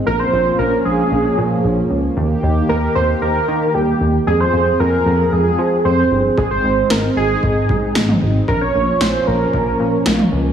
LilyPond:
<<
  \new Staff \with { instrumentName = "Analog synth lead" } { \time 4/4 \key bes \dorian \tempo 4 = 114 bes'16 c''8. bes'8 aes'2 r8 | r4 bes'8 c''8 bes'4 g'8. r16 | aes'16 c''8. bes'4 aes'4 c''8. r16 | aes'16 c''8. bes'8 aes'2 r8 |
bes'16 des''8. c''8 bes'2 r8 | }
  \new Staff \with { instrumentName = "Analog synth pad" } { \time 4/4 \key bes \dorian << { <f des'>1 | <ees g'>1 | <f aes'>1 | <aes ees'>1 |
<f des'>1 | } \\ { bes1 | bes1 | c'1~ | c'1 |
bes1 | } >> }
  \new Staff \with { instrumentName = "Analog synth bass" } { \clef bass \time 4/4 \key bes \dorian bes,,8 bes,,8 bes,,8 bes,,8 bes,,8 bes,8 bes,,8 des,8 | ees,8 ees,8 ees,8 ees,8 ees,8 ees8 ees,8 ees,8 | f,8 f,8 f,8 f,8 f,8 f8 f,8 g,,8 | aes,,8 aes,,8 aes,,8 aes,,8 aes,,8 aes,8 aes,,8 aes,,8 |
bes,,8 bes,,8 bes,,8 bes,,8 bes,,8 bes,8 bes,,8 des,8 | }
  \new DrumStaff \with { instrumentName = "Drums" } \drummode { \time 4/4 r4 r4 r4 r4 | r4 r4 r4 r4 | r4 r4 r4 r4 | bd4 sn4 bd8 bd8 sn16 toml8. |
bd4 sn4 bd4 sn16 toml8. | }
>>